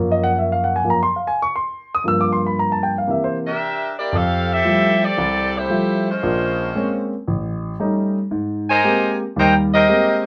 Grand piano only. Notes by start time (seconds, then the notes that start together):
Already playing: F#2 F3 A#3
0.12 D#5
0.24 F#5
0.39 E5
0.52 F5
0.64 F#5
0.76 G#5
0.83 F#2 F3 A#3
0.90 A#5
1.03 C6
1.16 F5
1.27 G#5
1.42 C#6
1.56 C6
1.95 D#6
2.04 G2 F3 A#3 E6
2.21 D6
2.33 C6
2.47 B5
2.59 A#5
2.72 A5
2.83 G5
2.98 F5
3.07 C3 E3 A#3 E5
3.24 C5
4.13 F2
4.65 F3 G3 A3 E4
5.18 C2
5.69 F3 G3 A3 E4
6.23 A#1 A#2
6.75 G#3 A#3 C4 C#4
7.28 A1
7.80 G3 A3 C#4 D#4
8.31 G#2
8.84 G#3 A#3 C4 G4
9.36 D#2 G3
9.89 G#3 A#3 C4 G4